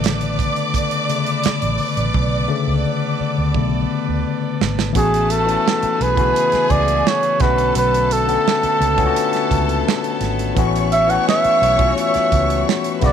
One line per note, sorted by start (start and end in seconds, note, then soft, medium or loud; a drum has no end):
0.00 0.47 A1 medium
0.00 1.09 C#3 medium
0.00 1.08 D3 medium
0.00 1.09 A3 soft
0.00 4.91 B3 medium
0.00 4.91 A4 medium
0.00 4.91 B4 medium
0.00 4.56 D5 loud
0.00 4.91 D5 medium
0.00 4.56 D6 loud
0.00 closed hi-hat medium
0.06 snare loud
0.21 closed hi-hat medium
0.39 kick loud
0.39 closed hi-hat medium
0.56 closed hi-hat soft
0.74 kick loud
0.74 closed hi-hat medium
0.91 closed hi-hat medium
1.08 1.41 C#3 medium
1.08 1.40 D3 soft
1.08 1.41 A3 soft
1.08 closed hi-hat medium
1.27 closed hi-hat medium
1.44 muted fingered electric bass stroke soft
1.44 snare loud
1.44 closed hi-hat medium
1.62 1.77 A1 medium
1.62 closed hi-hat medium
1.78 open hi-hat medium
1.97 2.12 A1 medium
1.97 closed hi-hat medium
2.14 2.45 B1 loud
2.14 kick loud
2.48 4.91 C#3 medium
2.48 3.54 D3 medium
2.48 3.54 A3 medium
2.68 2.82 C#2 medium
3.20 muted fingered electric bass stroke medium
3.38 3.53 D2 medium
3.54 3.85 B1 loud
3.54 3.86 D3 medium
3.54 3.87 A3 soft
3.54 3.87 B3 medium
3.54 kick medium
4.09 4.23 D2 medium
4.61 4.91 G#1 medium
4.61 snare loud
4.79 snare medium
4.93 5.55 A1 loud
4.93 5.28 E3 medium
4.93 5.28 A3 medium
4.93 5.98 A3 medium
4.93 7.38 A3 medium
4.93 5.29 B3 medium
4.93 5.29 C#4 medium
4.93 7.38 F#4 medium
4.93 5.30 F#4 medium
4.93 7.38 B4 medium
4.93 13.13 E5 medium
4.93 5.98 A5 medium
4.93 kick loud
4.93 closed hi-hat medium
4.97 5.33 G#4 loud
5.14 closed hi-hat medium
5.30 6.03 A4 loud
5.30 closed hi-hat medium
5.45 5.92 E3 medium
5.45 5.93 A3 medium
5.45 5.93 B3 medium
5.45 5.93 C#4 medium
5.45 closed hi-hat medium
5.49 5.94 A4 medium
5.68 snare loud
5.83 muted fingered electric bass stroke soft
5.83 closed hi-hat medium
6.01 6.31 B1 medium
6.01 7.38 G#4 medium
6.01 6.72 B4 loud
6.01 7.38 G#5 loud
6.01 closed hi-hat medium
6.16 7.09 C#3 medium
6.16 7.07 E3 medium
6.16 7.08 A3 medium
6.16 7.08 B3 medium
6.16 7.09 F#4 medium
6.16 kick loud
6.16 closed hi-hat medium
6.36 closed hi-hat medium
6.52 muted fingered electric bass stroke soft
6.52 snare soft
6.52 closed hi-hat soft
6.70 7.01 C#2 medium
6.70 7.10 D5 loud
6.70 kick medium
6.70 closed hi-hat medium
6.88 closed hi-hat medium
7.07 7.43 C#5 loud
7.07 snare loud
7.23 closed hi-hat medium
7.38 7.71 B1 medium
7.38 7.46 C#3 medium
7.38 8.10 A3 medium
7.38 8.11 B3 medium
7.38 10.54 B3 medium
7.38 8.11 C#4 medium
7.38 10.53 A4 medium
7.38 7.76 B4 loud
7.38 10.53 C#5 medium
7.38 10.53 A5 loud
7.38 kick loud
7.38 closed hi-hat medium
7.42 8.13 D3 medium
7.42 8.12 F#4 loud
7.42 snare soft
7.58 closed hi-hat medium
7.75 8.36 B1 loud
7.75 8.14 B4 loud
7.75 closed hi-hat loud
7.94 closed hi-hat medium
8.11 10.22 A4 loud
8.11 closed hi-hat medium
8.27 8.73 D3 medium
8.27 8.73 A3 medium
8.27 8.74 B3 medium
8.27 8.74 C#4 medium
8.27 closed hi-hat medium
8.31 8.75 A4 medium
8.48 snare loud
8.63 muted fingered electric bass stroke soft
8.63 closed hi-hat medium
8.80 9.11 C#2 loud
8.80 closed hi-hat medium
8.97 9.89 A3 medium
8.97 9.89 B3 medium
8.97 9.90 C#4 medium
8.97 9.88 D4 medium
8.97 9.06 F4 medium
8.97 kick loud
8.97 closed hi-hat soft
9.07 9.93 F#4 loud
9.16 closed hi-hat medium
9.33 snare soft
9.33 closed hi-hat medium
9.51 9.81 C#2 medium
9.51 kick medium
9.51 closed hi-hat medium
9.69 closed hi-hat medium
9.88 snare loud
10.04 closed hi-hat medium
10.21 10.51 G#1 medium
10.21 snare soft
10.21 closed hi-hat medium
10.39 closed hi-hat medium
10.55 11.17 A1 loud
10.55 10.90 E3 medium
10.55 10.90 A3 medium
10.55 13.00 A3 medium
10.55 10.91 B3 medium
10.55 10.91 C#4 medium
10.55 13.00 F#4 medium
10.55 13.00 B4 medium
10.55 12.98 C#5 loud
10.55 12.98 C#6 loud
10.55 kick loud
10.55 closed hi-hat medium
10.59 10.92 F#4 medium
10.76 closed hi-hat medium
10.92 11.12 E5 loud
10.92 closed hi-hat medium
11.07 11.54 E3 medium
11.07 11.54 A3 medium
11.07 11.54 B3 medium
11.07 11.55 C#4 medium
11.07 11.55 F#4 medium
11.07 11.27 F#5 loud
11.07 closed hi-hat medium
11.28 11.94 E5 loud
11.28 snare loud
11.44 muted fingered electric bass stroke soft
11.44 closed hi-hat medium
11.62 11.92 B1 loud
11.62 closed hi-hat medium
11.77 12.69 E3 medium
11.77 12.70 A3 medium
11.77 12.70 B3 medium
11.77 12.71 C#4 medium
11.77 11.87 F4 medium
11.77 kick loud
11.77 closed hi-hat soft
11.88 12.74 F#4 medium
11.98 12.65 E5 loud
11.98 closed hi-hat medium
12.14 muted fingered electric bass stroke medium
12.14 snare soft
12.14 closed hi-hat medium
12.32 12.62 C#2 medium
12.32 kick medium
12.32 closed hi-hat medium
12.50 closed hi-hat medium
12.69 snare loud
12.84 closed hi-hat medium
13.00 13.13 B1 loud
13.00 13.02 C#3 medium
13.00 13.13 C#3 medium
13.00 13.13 A3 medium
13.00 13.13 B3 medium
13.00 13.13 F#4 medium
13.00 13.13 B4 medium
13.00 13.13 B5 loud
13.00 kick loud
13.00 closed hi-hat medium
13.04 13.13 D3 medium
13.04 13.13 B3 medium
13.04 13.13 A4 medium
13.04 13.13 B4 medium
13.04 13.13 D5 loud
13.04 snare soft